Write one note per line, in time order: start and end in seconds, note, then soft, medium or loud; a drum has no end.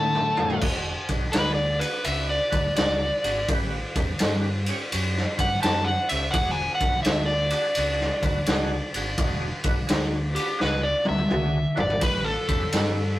0.00 0.60 A2 medium
0.00 0.62 A3 medium
0.00 0.22 C#4 medium
0.00 0.22 D#4 medium
0.00 0.22 A4 medium
0.00 0.60 F#5 medium
0.00 0.62 A5 loud
0.15 mid tom medium
0.37 0.54 C#4 medium
0.37 0.54 D#4 medium
0.37 0.55 G#4 medium
0.37 floor tom medium
0.50 floor tom medium
0.61 0.93 E1 medium
0.61 0.93 D4 medium
0.61 0.93 F#4 medium
0.61 0.93 G#4 loud
0.61 kick loud
0.61 crash loud
1.09 1.26 B1 medium
1.09 1.25 D4 medium
1.09 1.25 F#4 medium
1.09 1.25 G#4 loud
1.09 kick medium
1.09 ride medium
1.32 1.80 D2 medium
1.32 1.64 D4 medium
1.32 1.63 F#4 medium
1.32 1.64 G#4 medium
1.32 1.54 B4 medium
1.32 snare loud
1.32 ride loud
1.55 1.80 D5 medium
1.79 1.96 D4 medium
1.79 1.96 F#4 medium
1.79 1.96 G#4 medium
1.79 2.04 B4 medium
1.79 ride medium
2.04 2.36 C#2 loud
2.04 2.35 D4 medium
2.04 2.35 F#4 medium
2.04 2.35 B4 medium
2.04 2.29 E5 medium
2.04 ride medium
2.30 2.76 D5 medium
2.50 2.69 D2 medium
2.50 2.67 D4 medium
2.50 2.67 F#4 medium
2.50 2.67 B4 medium
2.50 kick medium
2.50 ride medium
2.75 3.08 C#2 medium
2.75 3.05 D4 medium
2.75 3.06 F#4 medium
2.75 3.06 G#4 medium
2.75 3.47 D5 loud
2.75 snare loud
2.75 ride medium
3.24 3.40 G#1 medium
3.24 3.40 D4 medium
3.24 3.39 F#4 medium
3.24 3.40 G#4 medium
3.24 ride medium
3.48 3.79 A1 medium
3.48 3.78 C#4 loud
3.48 3.78 G4 medium
3.48 3.79 B4 loud
3.48 kick loud
3.48 ride medium
3.95 4.12 E2 medium
3.95 4.12 C#4 medium
3.95 4.12 G4 medium
3.95 4.12 B4 medium
3.95 kick medium
3.95 ride medium
4.19 4.67 G2 medium
4.19 4.50 C#4 medium
4.19 4.49 G4 medium
4.19 4.50 B4 medium
4.19 snare loud
4.19 ride medium
4.66 4.83 C#4 medium
4.66 4.83 G4 medium
4.66 4.83 C#5 medium
4.66 ride medium
4.92 5.23 F#2 medium
4.92 5.21 C#4 medium
4.92 5.21 G4 medium
4.92 5.21 B4 medium
4.92 ride loud
5.17 snare soft
5.37 5.54 G2 medium
5.37 5.53 C#4 medium
5.37 5.53 G4 medium
5.37 5.53 B4 medium
5.37 5.62 F#5 loud
5.37 kick medium
5.37 ride medium
5.62 5.94 F#2 medium
5.62 5.91 C#4 medium
5.62 5.91 G4 medium
5.62 5.91 B4 loud
5.62 5.86 A5 medium
5.62 snare loud
5.62 ride medium
5.85 6.09 F#5 medium
6.09 6.26 C#2 medium
6.09 6.25 C#4 medium
6.09 6.26 G4 medium
6.09 6.25 A4 medium
6.09 6.33 E5 medium
6.09 ride medium
6.31 6.64 E1 medium
6.31 6.62 D4 medium
6.31 6.62 F#4 medium
6.31 6.63 G#4 loud
6.31 6.56 F#5 loud
6.31 kick loud
6.31 ride loud
6.51 6.75 G#5 medium
6.75 7.01 F#5 medium
6.80 6.96 B1 medium
6.80 6.96 D4 medium
6.80 6.96 F#4 medium
6.80 6.96 B4 medium
6.80 kick medium
6.80 ride medium
7.03 7.51 D2 medium
7.03 7.33 D4 medium
7.03 7.34 F#4 medium
7.03 7.34 G#4 medium
7.03 7.26 E5 medium
7.03 snare loud
7.03 ride medium
7.26 9.37 D5 loud
7.50 7.67 D4 medium
7.50 7.67 F#4 medium
7.50 7.67 G#4 medium
7.50 ride medium
7.75 8.07 C#2 loud
7.75 8.06 D4 medium
7.75 8.06 F#4 medium
7.75 8.06 G#4 medium
7.75 ride medium
8.00 snare soft
8.23 8.39 D2 medium
8.23 8.39 D4 medium
8.23 8.39 F#4 medium
8.23 8.39 B4 loud
8.23 kick medium
8.23 ride medium
8.46 8.77 C#2 medium
8.46 8.76 D4 loud
8.46 8.77 F#4 loud
8.46 8.76 G#4 loud
8.46 snare loud
8.46 ride medium
8.94 9.10 G#1 medium
8.94 9.11 D4 medium
8.94 9.10 F#4 medium
8.94 9.10 G#4 medium
8.94 ride medium
9.18 9.48 E1 medium
9.18 9.47 D4 loud
9.18 9.48 F#4 loud
9.18 9.48 G#4 loud
9.18 kick loud
9.18 ride medium
9.64 9.80 B1 medium
9.64 9.80 D4 medium
9.64 9.80 F#4 medium
9.64 9.80 B4 medium
9.64 kick medium
9.64 ride medium
9.87 10.35 D2 medium
9.87 10.18 D4 medium
9.87 10.18 F#4 medium
9.87 10.17 G#4 medium
9.87 snare loud
9.87 ride medium
10.33 10.50 D4 medium
10.33 10.50 F#4 medium
10.33 10.59 G4 medium
10.33 10.50 B4 medium
10.33 ride medium
10.58 10.91 C#2 loud
10.58 10.88 D4 medium
10.58 10.88 F#4 medium
10.58 10.88 G#4 medium
10.58 10.84 B4 medium
10.58 snare medium
10.83 11.07 D5 medium
11.05 11.22 D4 medium
11.05 11.22 F#4 medium
11.05 11.21 G#4 medium
11.05 11.77 E5 loud
11.05 high tom medium
11.09 11.24 D2 medium
11.18 high tom medium
11.28 11.61 C#2 medium
11.28 11.58 D4 medium
11.28 11.58 F#4 medium
11.28 11.58 G#4 medium
11.28 mid tom medium
11.75 11.93 G#1 medium
11.75 11.91 D4 medium
11.75 11.92 F#4 medium
11.75 11.92 B4 medium
11.75 floor tom loud
11.80 12.03 D5 medium
11.90 floor tom medium
12.00 12.32 A1 loud
12.00 12.30 C#4 medium
12.00 12.30 G4 medium
12.00 12.30 B4 loud
12.00 12.26 B4 loud
12.00 kick loud
12.00 ride loud
12.25 13.19 A4 loud
12.48 12.65 E2 medium
12.48 12.63 C#4 medium
12.48 12.64 G4 medium
12.48 12.64 B4 medium
12.48 kick medium
12.48 ride medium
12.72 13.18 G2 medium
12.72 13.02 C#4 medium
12.72 13.02 G4 medium
12.72 13.03 B4 medium
12.72 snare loud
12.72 ride loud